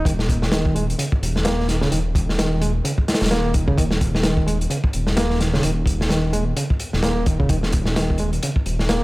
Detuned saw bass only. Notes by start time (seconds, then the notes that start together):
0.05 D#1
1.22 D#1
1.92 D#1
3.21 D#1
3.78 D#1
4.94 D#1
5.64 D#1
6.93 D#1
7.49 D#1
8.66 D#1